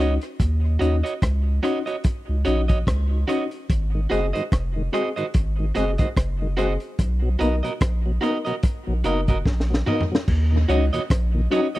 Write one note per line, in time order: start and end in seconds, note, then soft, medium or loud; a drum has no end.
0.00 0.18 C#2 medium
0.00 0.16 C#4 medium
0.00 0.16 D#4 medium
0.00 0.13 F#4 medium
0.00 0.16 F#4 medium
0.00 0.13 C#5 medium
0.00 0.13 D#5 medium
0.00 closed hi-hat medium
0.21 closed hi-hat medium
0.40 0.78 D#2 loud
0.40 kick loud
0.40 closed hi-hat medium
0.79 1.03 D#2 medium
0.79 0.98 C#4 medium
0.79 0.98 D#4 medium
0.79 0.95 F#4 medium
0.79 0.98 F#4 medium
0.79 0.96 C#5 medium
0.79 0.96 D#5 medium
0.79 closed hi-hat medium
1.03 1.13 F#4 medium
1.03 1.13 C#5 medium
1.03 1.13 D#5 medium
1.03 closed hi-hat medium
1.22 1.60 C#2 loud
1.22 kick loud
1.22 cross-stick loud
1.22 closed hi-hat medium
1.63 1.80 C#4 medium
1.63 1.80 D#4 medium
1.63 1.78 F#4 medium
1.63 1.81 F#4 loud
1.63 1.78 C#5 medium
1.63 1.78 D#5 medium
1.63 closed hi-hat medium
1.86 1.96 F#4 soft
1.86 1.96 C#5 soft
1.86 1.95 D#5 medium
1.86 closed hi-hat soft
2.04 kick loud
2.04 closed hi-hat medium
2.28 2.45 C#2 medium
2.28 2.35 D#4 soft
2.28 2.35 F#4 soft
2.45 2.84 A#1 medium
2.45 2.63 C#4 medium
2.45 2.63 D#4 medium
2.45 2.60 F#4 medium
2.45 2.63 F#4 loud
2.45 2.60 C#5 medium
2.45 2.61 D#5 medium
2.45 closed hi-hat medium
2.68 2.78 F#4 medium
2.68 2.78 C#5 medium
2.68 2.78 D#5 medium
2.68 kick medium
2.68 closed hi-hat medium
2.87 3.25 C#2 medium
2.87 kick loud
2.87 cross-stick loud
2.87 closed hi-hat medium
3.11 3.18 D#4 soft
3.11 3.18 F#4 soft
3.28 3.45 C#4 medium
3.28 3.46 D#4 medium
3.28 3.43 F#4 medium
3.28 3.46 F#4 medium
3.28 3.43 C#5 medium
3.28 3.44 D#5 medium
3.28 closed hi-hat medium
3.51 closed hi-hat medium
3.70 4.07 G#1 loud
3.70 kick loud
3.70 closed hi-hat medium
3.94 4.01 G#2 medium
3.94 4.01 D#3 medium
4.10 4.33 F#1 medium
4.10 4.20 G#3 medium
4.10 4.27 C4 medium
4.10 4.20 C4 medium
4.10 4.25 F#4 medium
4.10 4.28 F#4 medium
4.10 4.20 F#4 medium
4.10 4.28 G#4 loud
4.10 4.26 C5 medium
4.10 4.26 D#5 loud
4.10 closed hi-hat medium
4.33 4.42 G#2 medium
4.33 4.42 D#3 medium
4.33 4.43 F#4 medium
4.33 4.43 C5 medium
4.33 4.42 D#5 medium
4.33 closed hi-hat medium
4.52 4.89 F1 medium
4.52 kick loud
4.52 cross-stick loud
4.52 closed hi-hat medium
4.76 4.82 G#2 medium
4.76 4.83 D#3 medium
4.93 5.02 G#3 medium
4.93 5.10 C4 medium
4.93 5.02 C4 medium
4.93 5.08 F#4 medium
4.93 5.10 F#4 medium
4.93 5.03 F#4 medium
4.93 5.10 G#4 medium
4.93 5.08 C5 medium
4.93 5.08 D#5 medium
4.93 closed hi-hat medium
5.16 5.24 G#2 medium
5.16 5.24 D#3 medium
5.16 5.26 F#4 medium
5.16 5.25 C5 medium
5.16 5.25 D#5 medium
5.16 closed hi-hat soft
5.34 5.72 G#1 loud
5.34 kick loud
5.34 closed hi-hat medium
5.58 5.65 G#2 medium
5.58 5.66 D#3 medium
5.58 5.65 F#4 soft
5.58 5.65 G#4 soft
5.75 5.98 F#1 medium
5.75 5.85 G#3 medium
5.75 5.92 C4 medium
5.75 5.85 C4 medium
5.75 5.90 F#4 medium
5.75 5.93 F#4 medium
5.75 5.85 F#4 medium
5.75 5.93 G#4 loud
5.75 5.90 C5 medium
5.75 5.91 D#5 medium
5.75 closed hi-hat medium
5.98 6.07 G#2 medium
5.98 6.07 D#3 medium
5.98 6.08 F#4 soft
5.98 6.08 C5 medium
5.98 6.07 D#5 medium
5.98 kick medium
5.98 closed hi-hat medium
6.17 6.77 F#1 medium
6.17 kick loud
6.17 cross-stick loud
6.17 closed hi-hat medium
6.41 6.48 G#2 medium
6.41 6.48 D#3 medium
6.41 6.47 F#4 soft
6.41 6.47 G#4 soft
6.57 6.67 G#3 medium
6.57 6.75 C4 medium
6.57 6.67 C4 medium
6.57 6.72 F#4 medium
6.57 6.75 F#4 medium
6.57 6.68 F#4 medium
6.57 6.76 G#4 loud
6.57 6.72 C5 medium
6.57 6.73 D#5 medium
6.57 closed hi-hat medium
6.80 closed hi-hat medium
6.99 7.36 B1 loud
6.99 kick loud
6.99 closed hi-hat medium
7.22 7.29 B2 medium
7.22 7.29 F#3 medium
7.39 7.62 B1 medium
7.39 7.49 A#3 medium
7.39 7.49 B3 medium
7.39 7.57 B3 medium
7.39 7.49 D#4 medium
7.39 7.57 D#4 medium
7.39 7.54 F#4 medium
7.39 7.55 A#4 medium
7.39 7.58 A#4 loud
7.39 7.55 D#5 medium
7.39 closed hi-hat medium
7.63 7.70 B2 medium
7.63 7.70 F#3 medium
7.63 7.73 F#4 medium
7.63 7.72 A#4 medium
7.63 7.72 D#5 medium
7.63 closed hi-hat medium
7.81 8.19 A#1 medium
7.81 kick loud
7.81 cross-stick loud
7.81 closed hi-hat medium
8.06 8.12 B2 medium
8.06 8.12 F#3 medium
8.21 8.31 A#3 medium
8.21 8.31 B3 medium
8.21 8.39 B3 medium
8.21 8.31 D#4 medium
8.21 8.40 D#4 medium
8.21 8.36 F#4 medium
8.21 8.37 A#4 medium
8.21 8.40 A#4 medium
8.21 8.38 D#5 medium
8.21 closed hi-hat medium
8.45 8.53 B2 medium
8.45 8.53 F#3 medium
8.45 8.55 F#4 soft
8.45 8.55 A#4 medium
8.45 8.54 D#5 medium
8.45 closed hi-hat soft
8.63 kick loud
8.63 closed hi-hat medium
8.87 9.04 A#1 medium
8.87 8.94 B2 medium
8.87 8.94 F#3 medium
8.87 8.94 D#4 soft
8.87 8.94 A#4 soft
9.04 9.43 F#1 medium
9.04 9.14 A#3 medium
9.04 9.21 B3 medium
9.04 9.14 B3 medium
9.04 9.22 D#4 medium
9.04 9.14 D#4 medium
9.04 9.19 F#4 medium
9.04 9.20 A#4 medium
9.04 9.22 A#4 loud
9.04 9.20 D#5 medium
9.04 closed hi-hat medium
9.28 9.35 B2 medium
9.28 9.35 F#3 medium
9.28 9.38 F#4 medium
9.28 9.38 A#4 medium
9.28 9.37 D#5 medium
9.28 kick medium
9.28 closed hi-hat medium
9.46 9.83 A#1 medium
9.46 kick loud
9.46 snare soft
9.60 snare medium
9.70 9.76 B2 medium
9.70 9.77 F#3 medium
9.70 9.76 D#4 soft
9.70 9.76 A#4 soft
9.74 snare medium
9.86 9.96 A#3 medium
9.86 10.04 B3 medium
9.86 9.96 B3 medium
9.86 10.04 D#4 medium
9.86 9.96 D#4 medium
9.86 10.01 F#4 medium
9.86 10.04 A#4 medium
9.86 10.02 A#4 medium
9.86 10.02 D#5 medium
9.86 mid tom medium
10.01 floor tom medium
10.12 10.18 B2 medium
10.12 10.18 F#3 medium
10.12 snare medium
10.28 10.66 D#2 loud
10.28 kick loud
10.28 crash loud
10.52 10.59 D#2 medium
10.52 10.59 A#2 medium
10.68 10.91 C#2 medium
10.68 10.78 F#3 medium
10.68 10.86 C#4 medium
10.68 10.78 C#4 medium
10.68 10.86 D#4 medium
10.68 10.78 D#4 medium
10.68 10.84 F#4 medium
10.68 10.86 F#4 loud
10.68 10.84 C#5 medium
10.68 10.85 D#5 medium
10.68 closed hi-hat medium
10.93 11.00 D#2 medium
10.93 11.00 A#2 medium
10.93 11.02 F#4 medium
10.93 11.02 C#5 medium
10.93 11.01 D#5 medium
10.93 closed hi-hat medium
11.10 11.48 A#1 loud
11.10 kick loud
11.10 cross-stick loud
11.10 closed hi-hat medium
11.34 11.41 D#2 medium
11.34 11.41 A#2 medium
11.51 11.61 F#3 medium
11.51 11.68 C#4 medium
11.51 11.61 C#4 medium
11.51 11.68 D#4 medium
11.51 11.61 D#4 medium
11.51 11.66 F#4 medium
11.51 11.69 F#4 loud
11.51 11.67 C#5 loud
11.51 11.67 D#5 loud
11.51 closed hi-hat medium
11.75 11.79 C#5 medium
11.75 11.79 D#5 medium
11.75 closed hi-hat medium